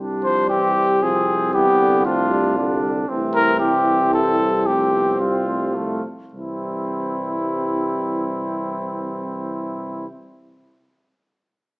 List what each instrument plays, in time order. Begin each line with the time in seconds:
Already playing: tuba C2, french horn G3, euphonium G3, trumpet D4
0.24 french horn F3, trumpet C5
0.50 french horn E3, trumpet C4 G4
0.77 french horn E3
1.03 euphonium F3, french horn F3, trumpet C4 G#4
1.29 french horn F3
1.53 euphonium E3, french horn G3, trumpet B3 G4
1.80 euphonium D3
2.05 euphonium F3, french horn A3, trumpet D4 F4
2.31 euphonium G3
2.57 euphonium D3, french horn G3, trumpet D4
2.83 french horn G3
3.08 tuba C2, euphonium E3, french horn A3, trumpet C4
3.34 trumpet A#4
3.60 french horn G3, trumpet C4 G4
3.87 french horn G3
4.14 trumpet A4
4.66 euphonium F3, french horn A3, trumpet C4 G4
4.93 french horn B3
5.20 euphonium G3, french horn C4, trumpet F4
5.48 french horn A3
5.75 euphonium F3, trumpet A3, french horn A3
6.33 tuba C2, euphonium E3, french horn G3, trumpet C4 E4